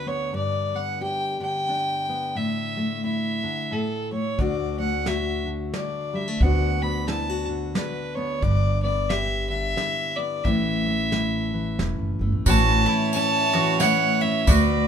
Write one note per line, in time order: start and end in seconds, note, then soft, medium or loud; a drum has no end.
0.00 0.32 D2 medium
0.00 1.39 D3 soft
0.00 1.68 D4 soft
0.00 0.31 F#4 soft
0.06 0.30 B3 soft
0.06 0.34 C#5 medium
0.33 2.32 G2 medium
0.33 0.77 D5 medium
0.74 2.08 B3 soft
0.74 1.02 F#5 medium
1.01 2.33 G4 medium
1.01 1.39 G5 medium
1.40 3.42 D3 soft
1.40 2.38 G5 medium
1.69 2.33 D4 soft
2.09 2.33 B3 soft
2.35 3.43 A2 medium
2.35 3.04 E5 medium
2.77 3.68 A3 soft
3.04 4.39 E4 soft
3.04 3.73 E5 medium
3.44 3.71 D3 soft
3.71 4.39 A2 medium
3.71 4.12 A4 medium
4.12 4.36 A3 soft
4.12 4.41 C#5 medium
4.38 6.40 D2 medium
4.38 5.69 D2 medium
4.38 5.46 D3 soft
4.38 4.78 A3 soft
4.38 5.73 D4 soft
4.38 5.07 F#4 medium
4.38 4.79 D5 medium
4.38 kick medium
4.38 closed hi-hat soft
4.79 6.13 A3 soft
4.79 5.09 F#5 medium
5.06 6.38 F#4 soft
5.06 5.47 E5 medium
5.06 snare medium
5.06 closed hi-hat soft
5.46 6.41 D3 soft
5.74 6.43 D4 soft
5.74 6.17 D5 medium
5.74 snare medium
5.74 closed hi-hat soft
6.13 6.28 G3 soft
6.13 6.43 E5 medium
6.28 6.41 A3 soft
6.40 7.71 D2 medium
6.40 8.42 D2 medium
6.40 7.47 D3 soft
6.40 6.82 B3 soft
6.40 7.76 D4 soft
6.40 7.08 F#4 medium
6.40 6.83 F#5 medium
6.40 kick medium
6.40 closed hi-hat soft
6.82 8.15 B3 soft
6.82 7.08 B5 medium
7.08 7.29 E4 medium
7.08 7.46 A5 medium
7.08 snare medium
7.08 closed hi-hat soft
7.29 8.44 F#4 soft
7.48 9.49 D3 soft
7.75 8.40 D4 soft
7.75 8.16 B4 medium
7.75 snare medium
7.75 closed hi-hat soft
8.15 8.40 B3 soft
8.15 8.44 C#5 medium
8.42 9.73 G1 medium
8.42 10.42 G2 medium
8.42 8.82 D5 medium
8.42 kick medium
8.42 closed hi-hat soft
8.82 10.17 B3 soft
8.82 9.11 D5 medium
9.10 10.42 G4 medium
9.10 9.48 E5 medium
9.10 snare medium
9.10 closed hi-hat soft
9.49 10.45 D3 soft
9.49 10.17 E5 medium
9.77 10.46 E4 soft
9.77 snare medium
9.77 closed hi-hat soft
10.16 10.42 B3 soft
10.16 10.46 D5 medium
10.44 11.75 A1 medium
10.44 12.45 A2 medium
10.44 11.52 E3 medium
10.44 10.85 A3 medium
10.44 11.79 C#4 soft
10.44 11.12 E4 medium
10.44 11.79 E5 medium
10.44 kick medium
10.44 closed hi-hat soft
10.87 12.20 A3 soft
11.12 12.47 E4 soft
11.12 snare medium
11.12 closed hi-hat soft
11.54 12.44 E3 soft
11.79 11.97 E1 medium
11.79 12.44 C#4 soft
11.79 snare medium
11.79 closed hi-hat soft
11.99 12.17 F#1 medium
12.19 12.32 G1 medium
12.19 12.44 A3 soft
12.32 12.45 A1 medium
12.45 12.85 A1 medium
12.45 14.48 A2 medium
12.45 13.53 E3 medium
12.45 13.80 A3 medium
12.45 13.14 C#4 medium
12.45 12.86 E4 medium
12.45 12.86 F#4 medium
12.45 14.43 C#5 loud
12.45 13.11 A5 loud
12.45 kick medium
12.45 ride soft
12.45 tambourine medium
12.86 13.52 E4 medium
12.86 13.54 E4 medium
13.13 14.21 C#4 medium
13.13 13.77 A5 loud
13.13 ride soft
13.13 tambourine medium
13.53 14.45 E3 medium
13.53 14.49 E4 medium
13.53 13.80 F#4 medium
13.80 14.45 A3 medium
13.80 14.46 E4 medium
13.80 14.23 F#5 medium
13.80 snare medium
13.80 ride soft
13.80 tambourine medium
14.21 14.46 C#4 medium
14.21 14.49 E5 medium
14.21 ride soft
14.47 14.86 D2 loud
14.47 14.88 D2 medium
14.47 14.88 A3 medium
14.47 14.87 F#4 medium
14.47 14.88 B4 medium
14.47 14.88 D5 medium
14.47 kick medium
14.47 ride soft
14.47 tambourine medium